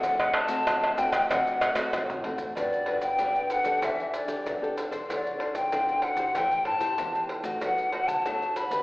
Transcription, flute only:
0.00 0.35 F#5 medium
0.34 1.00 A5 medium
0.98 1.29 G5 medium
1.29 1.89 F#5 medium
2.57 3.01 D5 medium
3.02 3.44 G5 loud
3.44 3.53 G5 medium
3.52 3.86 F#5 medium
3.84 4.15 E5 medium
4.15 4.74 D5 medium
5.11 5.54 D5 medium
5.55 6.05 G5 medium
6.04 6.39 F#5 medium
6.37 6.66 G5 loud
6.67 7.26 A5 loud
7.63 8.09 F#5 medium
8.08 8.59 A5 medium
8.57 8.83 B5 medium

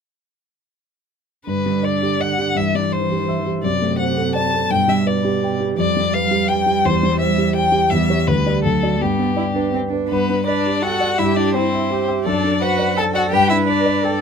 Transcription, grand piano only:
1.47 2.52 G2 soft
1.66 1.95 G3 soft
1.83 2.12 D5 soft
2.02 2.31 G4 soft
2.20 2.49 D5 soft
2.38 2.56 G4 soft
2.55 3.60 G2 soft
2.75 3.03 G3 soft
2.92 3.21 C5 soft
3.11 3.39 G4 soft
3.29 3.57 E5 soft
3.46 3.64 G4 soft
3.64 4.68 F#2 soft
3.82 4.10 A3 soft
3.99 4.28 C5 soft
4.17 4.46 A4 soft
4.35 4.64 D5 soft
4.54 4.71 A4 soft
4.70 5.74 G2 soft
4.88 5.17 G3 soft
5.06 5.35 B4 soft
5.24 5.53 G4 soft
5.43 5.71 G5 soft
5.60 5.78 G4 soft
5.79 6.82 F2 soft
5.97 6.25 G3 soft
6.15 6.43 B4 soft
6.31 6.60 G4 soft
6.49 6.78 G5 soft
6.66 6.85 G4 soft
6.85 7.89 E2 soft
7.03 7.31 G3 soft
7.20 7.49 C5 soft
7.38 7.67 G4 soft
7.55 7.84 G5 soft
7.72 7.91 G4 soft
7.92 8.26 E2 soft
8.09 8.26 G4 soft
8.09 8.26 C#5 soft
8.28 8.63 D2 soft
8.46 8.62 G4 soft
8.46 8.62 D5 soft
8.65 9.00 D2 soft
8.83 8.99 F#4 soft
8.83 8.99 D5 soft
9.02 10.08 G2 soft
9.19 9.48 B3 soft
9.36 9.66 D5 soft
9.56 9.85 B4 soft
9.74 10.03 G5 soft
9.93 10.11 B4 soft
10.11 11.16 G2 soft
10.29 10.58 D4 soft
10.48 10.77 D5 soft
10.66 10.95 G4 soft
10.84 11.12 G5 soft
11.00 11.19 D5 soft
11.19 12.23 G2 soft
11.37 11.66 E4 soft
11.55 11.84 C5 soft
11.73 12.02 E5 soft
11.91 12.19 G5 soft
12.08 12.26 E5 soft
12.26 13.30 F#2 soft
12.44 12.73 D4 soft
12.61 12.90 C5 soft
12.79 13.08 D5 soft
12.98 13.26 A5 soft
13.15 13.33 D5 soft
13.33 14.21 G2 soft
13.52 13.80 D4 soft
13.69 13.98 B4 soft
13.86 14.14 D5 soft
14.04 14.21 G5 soft

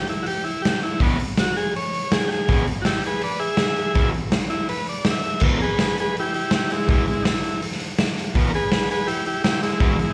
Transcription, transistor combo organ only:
0.09 0.26 E4 medium
0.23 0.25 F#4 medium
0.27 0.45 G4 medium
0.44 0.62 E4 medium
0.62 0.81 G4 medium
0.83 1.00 E4 medium
1.02 1.19 B3 loud
1.39 1.56 F#4 medium
1.57 1.74 G#4 medium
1.76 2.11 C#5 medium
2.12 2.30 G#4 medium
2.28 2.30 G4 medium
2.28 2.67 G#4 loud
2.82 2.84 F#4 medium
2.86 3.03 E4 medium
2.86 3.04 G4 medium
3.06 3.22 G#4 medium
3.06 3.22 B4 medium
3.24 3.40 B4 medium
3.24 3.41 D5 medium
3.39 4.09 G#4 medium
3.39 4.11 E5 medium
4.50 4.68 E4 loud
4.69 4.87 B4 medium
4.89 5.06 D5 medium
5.11 5.44 E5 loud
5.59 5.78 G#4 medium
5.59 5.61 A#4 medium
5.64 5.80 B4 loud
5.81 5.97 G#4 medium
5.81 5.98 B4 medium
6.00 6.16 G#4 medium
6.00 6.17 B4 medium
6.20 6.34 E4 medium
6.20 6.33 G4 medium
6.35 6.52 E4 medium
6.35 6.52 G4 medium
6.55 6.70 E4 medium
6.55 6.71 G4 medium
6.72 6.88 G#3 medium
6.72 6.89 E4 loud
6.90 7.06 G#3 medium
6.90 7.06 E4 loud
7.08 7.24 G#3 loud
7.08 7.25 E4 loud
7.22 7.25 D#4 medium
7.22 7.61 E4 loud
8.50 8.52 A#4 medium
8.55 8.71 G#4 medium
8.55 8.71 B4 loud
8.72 8.89 G#4 medium
8.72 8.89 B4 loud
8.91 9.07 G#4 medium
8.91 9.08 B4 loud
9.07 9.24 E4 medium
9.07 9.25 G4 loud
9.27 9.42 E4 medium
9.27 9.43 G4 medium
9.44 9.61 E4 medium
9.44 9.62 G4 loud
9.62 9.79 G#3 medium
9.62 9.80 E4 loud
9.81 9.98 G#3 medium
9.81 9.99 E4 loud
9.99 10.13 G#3 medium
9.99 10.13 E4 loud
10.10 10.13 D#4 medium

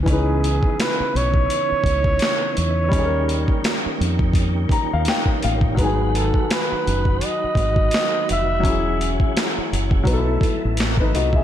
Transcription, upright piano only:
0.03 2.86 E3 medium
0.03 2.88 C#4 medium
0.09 2.89 D#4 medium
0.09 2.91 B4 medium
2.88 5.72 G3 medium
2.88 5.73 C#4 medium
2.95 5.75 D#4 medium
2.95 3.03 G#4 medium
3.05 5.80 A#4 medium
4.72 4.91 A#5 medium
4.93 5.06 F5 medium
5.08 5.40 G5 medium
5.44 5.76 F5 medium
5.75 8.58 F#3 medium
5.75 8.59 B3 medium
5.81 8.61 D#3 medium
5.81 8.63 G#5 medium
8.60 10.02 F#3 medium
8.60 10.03 C#4 medium
8.67 10.05 E4 medium
8.67 10.07 G#4 medium
10.04 11.44 F#3 medium
10.04 11.44 B3 medium
10.10 10.16 D#4 medium
10.10 10.45 A4 medium
10.17 10.46 E4 medium
11.00 11.14 D#4 soft
11.00 11.13 B4 medium
11.15 11.34 F#4 medium
11.15 11.34 D#5 medium
11.35 11.44 G#4 medium
11.35 11.44 E5 medium

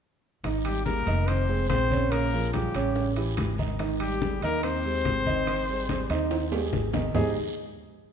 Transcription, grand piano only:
0.45 0.79 D#3 medium
0.45 0.79 D#4 medium
0.45 0.79 D#5 medium
0.86 1.03 G3 medium
0.86 1.04 G4 medium
0.86 1.04 G#4 medium
1.07 1.42 D#3 medium
1.07 1.42 D#4 medium
1.07 1.42 D#5 medium
1.49 1.83 G#3 medium
1.49 1.84 G#4 medium
1.49 1.84 C5 medium
1.91 2.25 C#3 medium
1.91 2.26 C#4 medium
1.91 2.26 C#5 medium
2.33 2.50 F3 medium
2.33 2.50 F4 medium
2.33 2.50 G#4 medium
2.54 2.71 F3 medium
2.54 2.71 F4 medium
2.54 2.72 G#4 medium
2.75 3.09 C#3 medium
2.75 3.10 C#4 medium
2.75 3.10 C#5 medium
3.17 3.51 E3 medium
3.17 3.51 E4 medium
3.17 3.51 G4 medium
3.59 3.76 D#3 medium
3.59 3.76 D#4 medium
3.59 3.76 D#5 medium
3.80 4.14 D#3 medium
3.80 4.14 D#4 medium
3.80 4.14 D#5 medium
4.22 4.39 G3 medium
4.22 4.39 G4 medium
4.22 4.39 G#4 medium
4.43 4.77 D#3 medium
4.43 4.77 D#4 medium
4.43 4.78 D#5 medium
4.85 5.19 G#3 medium
4.85 5.19 G4 medium
4.85 5.20 G#4 medium
5.27 5.61 D#3 medium
5.27 5.61 D#4 medium
5.27 5.61 D#5 medium
5.69 5.86 G3 medium
5.69 5.86 G4 medium
5.69 5.86 G#4 medium
5.89 6.07 G3 medium
5.89 6.07 G4 medium
5.89 6.07 G#4 medium
6.10 6.44 D#3 medium
6.10 6.45 D#4 medium
6.10 6.45 D#5 medium
6.52 6.86 G#3 medium
6.52 6.87 G4 medium
6.52 6.87 G#4 medium
6.94 7.11 D#3 medium
6.94 7.11 D#4 medium
6.94 7.11 D#5 medium
7.14 7.34 G#3 medium
7.14 7.34 D#4 medium
7.14 7.34 G4 medium
7.14 7.34 G#4 medium
7.14 7.34 C5 medium
7.14 7.35 D#5 medium

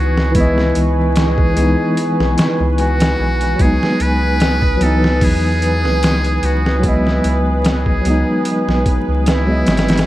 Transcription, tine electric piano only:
0.00 0.29 E3 medium
0.00 0.32 B3 medium
0.00 0.33 D#4 medium
0.32 1.50 E3 medium
0.32 1.52 G#3 medium
0.37 1.53 B3 medium
0.37 1.55 D#5 medium
1.54 3.53 E3 medium
1.54 3.55 G#3 medium
1.59 3.56 B3 medium
1.59 3.58 D#4 medium
3.56 4.75 F#3 medium
3.56 4.76 G#3 medium
3.61 4.77 B3 medium
3.61 4.79 D#4 medium
4.77 6.79 E3 medium
4.77 6.77 F#3 medium
4.83 6.80 B3 medium
4.83 6.81 D#4 medium
6.80 7.99 F#3 medium
6.80 8.00 G#3 medium
6.86 8.02 B3 medium
6.86 8.03 D#5 medium
8.01 9.42 F#3 medium
8.01 9.44 G#3 medium
8.07 9.45 B3 medium
8.07 9.47 D#4 medium
9.47 10.02 F#3 medium
9.47 10.03 G#3 medium
9.47 10.04 B3 medium
9.51 10.05 D#5 medium

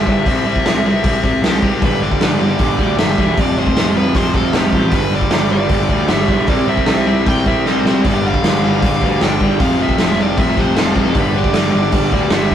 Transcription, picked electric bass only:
0.07 0.25 G1 medium
0.26 0.45 C2 medium
0.46 0.65 C2 medium
0.66 1.03 C2 medium
1.04 1.41 C2 medium
1.42 1.61 C2 medium
1.62 1.81 C2 medium
1.82 2.19 G1 medium
2.21 2.40 G1 medium
2.40 2.59 G1 medium
2.60 2.78 G1 medium
2.79 2.98 D2 medium
3.00 3.18 G1 medium
3.18 3.37 E1 medium
3.38 3.56 F1 loud
3.57 3.76 F1 medium
3.77 4.14 F1 medium
4.15 4.52 F1 medium
4.54 4.72 F1 loud
4.73 4.91 A1 medium
4.92 5.30 G1 medium
5.31 5.50 G1 medium
5.51 5.69 G1 medium
5.70 5.89 G1 medium
5.89 6.09 D2 medium
6.10 6.28 G1 medium
6.28 6.47 B1 medium
6.48 6.67 C2 medium
6.68 6.87 C2 medium
6.88 7.25 C2 medium
7.27 7.64 C2 medium
7.66 7.84 C2 medium
7.85 8.04 C2 medium
8.05 8.42 G1 medium
8.44 8.62 G1 medium
8.63 8.82 G1 medium
8.83 9.01 G1 medium
9.02 9.20 D2 medium
9.20 9.40 G1 loud
9.41 9.59 G1 medium
9.60 9.78 F1 medium
9.79 9.98 F1 medium
9.99 10.37 F1 medium
10.38 10.75 F1 medium
10.76 10.95 F1 medium
10.96 11.14 F1 medium
11.15 11.53 G1 loud
11.55 11.74 G1 medium
11.74 11.92 G1 medium
11.93 12.12 G1 medium
12.12 12.31 D2 medium
12.32 12.51 G1 medium
12.51 12.55 G1 medium

